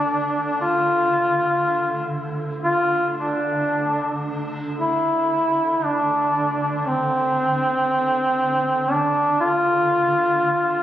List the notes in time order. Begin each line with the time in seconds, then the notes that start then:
Already playing: D3 D4
0.61 F4
2.63 F4
3.18 D4
4.78 D3 E4
5.84 D4
6.80 D4
6.87 C4
8.91 D4
9.40 F4